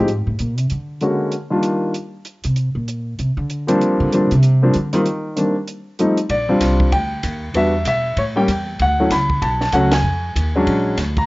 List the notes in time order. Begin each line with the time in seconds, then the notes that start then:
0.08 G#2, closed hi-hat
0.27 A2
0.39 A#2, closed hi-hat
0.58 C3, closed hi-hat
0.70 D3, closed hi-hat
1.01 D3 G#3 A#3 C#4 F#4, closed hi-hat
1.32 closed hi-hat
1.50 D#3 G3 A#3 D4 F4
1.63 closed hi-hat
1.94 closed hi-hat
2.25 closed hi-hat
2.44 C3, closed hi-hat
2.56 closed hi-hat
2.75 A#2
2.88 closed hi-hat
3.19 C3, closed hi-hat
3.37 D3
3.50 closed hi-hat
3.67 F3 G3 A#3 C4 D4, closed hi-hat
3.81 closed hi-hat
4.00 D3
4.12 F3 G3 A#3 C4 D4, closed hi-hat
4.31 C3, closed hi-hat
4.43 closed hi-hat
4.62 F3 G3 A#3 C4 D4
4.73 D3, closed hi-hat
4.93 D#3 G3 A#3 C4 F4, closed hi-hat
5.05 closed hi-hat
5.36 D#3 G3 A#3 C4 D4, closed hi-hat
5.67 closed hi-hat
5.99 F3 G3 A3 C4 D#4, closed hi-hat
6.17 closed hi-hat
6.30 A#1 D5, kick, ride
6.49 G3 C4 D4 F4
6.60 C2, kick, snare, hi-hat pedal, ride
6.80 kick
6.92 D2 G5, kick, ride
7.23 D#2, kick, hi-hat pedal, ride
7.54 E2 G3 B3 D4 F#4 E5, kick, ride
7.85 B2 E5, kick, hi-hat pedal, ride
8.16 A2 C#5, kick, ride
8.36 G3 A#3 C#4 G4 G5
8.48 E2, kick, hi-hat pedal, ride
8.79 D2 F#5, kick, ride
8.99 F#3 A3 C#4 E4
9.10 C#2 B5, kick, snare, hi-hat pedal, ride
9.30 kick
9.42 B1 A5, kick, ride
9.61 A5, snare
9.72 C#2 F#3 A3 C#4 F#4 F#5, kick, hi-hat pedal, ride
9.92 G#5, snare, ride
10.02 F2
10.36 D#2, kick, hi-hat pedal, ride
10.56 F#3 G#3 C#4 D4
10.67 A#1, kick, ride
10.97 D2, kick, snare, hi-hat pedal, ride
11.17 A#5, kick, ride